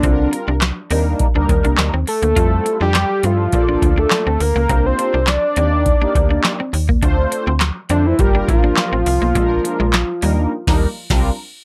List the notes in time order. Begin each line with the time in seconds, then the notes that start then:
Already playing: D4
0.03 C2 G3 C4 D4 F4 A4, kick, closed hi-hat
0.10 A#4
0.33 muted clean electric guitar stroke, closed hi-hat
0.48 C2 D4
0.61 snare, clap, closed hi-hat
0.90 D#2 G3 A#3 C4 D4 D#4 A#4, open hi-hat
1.19 kick, closed hi-hat
1.35 D2 G3 A#3 D4 D#4 A#4
1.49 D#2, muted clean electric guitar stroke, kick, closed hi-hat
1.64 C2 D4, closed hi-hat
1.78 D2, snare, clap, closed hi-hat
1.94 D#2 C4
2.07 A4, muted clean electric guitar stroke, open hi-hat
2.22 D2 A#3, closed hi-hat
2.36 F2 G3 C4 E4 F4 A4, kick, closed hi-hat
2.66 muted clean electric guitar stroke, closed hi-hat
2.81 F2 D4 G4
2.94 snare, clap, closed hi-hat
3.23 G2 G3 C4 E4 F4 A4, closed hi-hat
3.52 A#1 A#3 D4 F4 A4 D5, kick, closed hi-hat
3.68 A#3 D4 F4 A4 D5
3.82 D2, muted clean electric guitar stroke, kick, closed hi-hat
3.98 D4 A4
4.11 snare, clap, closed hi-hat
4.27 D2 C4
4.40 D2 A#4, muted clean electric guitar stroke, open hi-hat
4.56 C#2 A#3
4.69 C2 A#3 C4 D4 F4 G4 C5, kick, closed hi-hat
4.86 C5
4.99 muted clean electric guitar stroke, closed hi-hat
5.14 C2 D4
5.27 D5, snare, clap, closed hi-hat
5.56 D#2 A#3 C4 D4 D#4 G4 D5, closed hi-hat
5.86 kick, closed hi-hat
6.02 A#3 D4 D#4 G4 D5
6.15 D2, muted clean electric guitar stroke, kick, closed hi-hat
6.31 D4
6.44 snare, clap, closed hi-hat
6.60 C4
6.73 D#2, muted clean electric guitar stroke, open hi-hat
6.89 A#3, kick
7.02 D2 A3 C4 D4 F4 C5, kick, closed hi-hat
7.32 muted clean electric guitar stroke, closed hi-hat
7.47 D2 C4
7.60 snare, clap, closed hi-hat
7.89 F2 A3 C4 D4 F4 C5, closed hi-hat
8.06 E4
8.19 G1 G3 A#3 D4 F4 G4 A#4, kick, closed hi-hat
8.34 G3 A#3 D4 F4 A#4
8.48 A1 F4, muted clean electric guitar stroke, kick, closed hi-hat
8.64 D4
8.77 snare, clap, closed hi-hat
8.93 A1 C4
9.06 C2, muted clean electric guitar stroke, open hi-hat
9.22 B1 A#3
9.35 A#1 G#3 A#3 D4 F4 A4, kick, closed hi-hat
9.43 A#4
9.64 muted clean electric guitar stroke, closed hi-hat
9.80 A#1 G#3
9.93 snare, clap, closed hi-hat
10.22 D#2 G3 A#3 D4 D#4 A#4, open hi-hat
10.67 D#2 G3 A#3 D4 D#4 A#4, kick, snare, crash
11.10 C2 G3 C4 D4 F4 A#4, kick, snare, crash